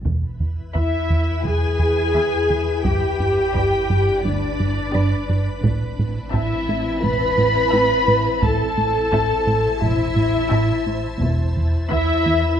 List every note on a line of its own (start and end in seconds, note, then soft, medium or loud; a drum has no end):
0.04 0.60 E1 soft
0.04 2.80 E2 medium
0.04 0.26 E2 medium
0.04 2.80 E4 soft
0.04 5.59 B4 medium
0.04 5.59 B5 soft
0.04 taiko medium
0.40 0.61 E2 soft
0.73 0.96 E2 medium
0.73 1.27 B3 soft
0.73 1.40 E4 soft
0.73 1.41 E4 medium
0.73 1.27 B4 soft
0.73 1.27 E5 soft
0.73 1.41 E5 medium
0.73 1.27 B5 soft
0.73 taiko medium
1.10 1.31 E2 medium
1.43 2.00 B1 soft
1.43 1.66 E2 medium
1.43 2.83 G#4 medium
1.43 2.84 G#4 medium
1.43 2.85 G#5 medium
1.79 2.00 E2 soft
2.14 2.36 E2 medium
2.14 2.67 B3 soft
2.14 2.67 B4 soft
2.14 2.67 E5 soft
2.14 2.66 B5 soft
2.50 2.71 E2 medium
2.83 5.63 G1 medium
2.83 3.39 G1 medium
2.83 3.05 G2 medium
2.83 5.63 D4 soft
2.83 4.21 G4 medium
2.83 4.24 G4 medium
2.83 4.21 G5 medium
2.83 taiko medium
3.20 3.41 G2 soft
3.54 3.76 G2 soft
3.54 4.06 B3 soft
3.54 4.06 G4 soft
3.54 4.07 D5 soft
3.54 4.06 B5 soft
3.54 taiko medium
3.90 4.11 G2 medium
4.23 4.79 D2 soft
4.23 4.45 G2 medium
4.23 5.63 D4 medium
4.23 5.64 D4 medium
4.23 5.64 D5 soft
4.60 4.80 G2 medium
4.94 5.15 G2 medium
4.94 5.46 B3 soft
4.94 5.46 G4 soft
4.94 5.46 D5 soft
4.94 5.47 B5 soft
5.29 5.50 G2 medium
5.64 6.19 A1 medium
5.64 8.42 A1 medium
5.64 5.85 A2 medium
5.64 8.43 C4 medium
5.64 8.41 E4 medium
5.64 8.41 A5 medium
5.64 taiko medium
5.99 6.20 A2 medium
6.33 6.55 A2 medium
6.33 6.85 C4 soft
6.33 6.99 E4 medium
6.33 6.85 E4 soft
6.33 6.99 E4 medium
6.33 6.85 E5 soft
6.33 6.99 E5 medium
6.33 6.85 A5 soft
6.33 taiko medium
6.69 6.90 A2 medium
7.02 7.58 E1 medium
7.02 7.24 A2 medium
7.02 8.42 B4 medium
7.02 8.43 B4 medium
7.02 8.43 B5 medium
7.38 7.59 A2 medium
7.72 7.94 A2 medium
7.72 8.24 C4 soft
7.72 8.24 E4 soft
7.72 8.24 E5 soft
7.72 8.24 A5 soft
8.08 8.29 A2 medium
8.42 8.98 A1 medium
8.42 11.18 A1 medium
8.42 8.63 A2 medium
8.42 12.60 E4 medium
8.42 9.82 A4 medium
8.42 9.79 A4 medium
8.42 11.17 C5 medium
8.42 11.17 A5 medium
8.42 9.82 A5 medium
8.42 taiko medium
8.77 8.98 A2 medium
9.12 9.34 A2 medium
9.12 9.64 C4 medium
9.12 9.64 E4 medium
9.12 9.64 E5 medium
9.12 9.64 A5 medium
9.12 taiko medium
9.47 9.68 A2 medium
9.81 10.37 E1 medium
9.81 10.03 A2 medium
9.81 11.21 E4 medium
9.81 11.22 E4 medium
9.81 11.22 E5 medium
10.16 10.37 A2 medium
10.51 10.72 A2 medium
10.51 11.03 C4 medium
10.51 11.03 E4 medium
10.51 11.04 E5 medium
10.51 11.04 A5 medium
10.86 11.08 A2 medium
11.20 11.77 E1 medium
11.20 11.42 E2 medium
11.20 12.60 E2 medium
11.20 12.60 B4 medium
11.20 12.60 B5 medium
11.20 taiko medium
11.57 11.78 E2 medium
11.90 12.12 E2 medium
11.90 12.43 B3 medium
11.90 12.57 E4 medium
11.90 12.43 E4 medium
11.90 12.57 E5 medium
11.90 12.43 E5 medium
11.90 12.43 B5 medium
11.90 taiko medium
12.26 12.47 E2 medium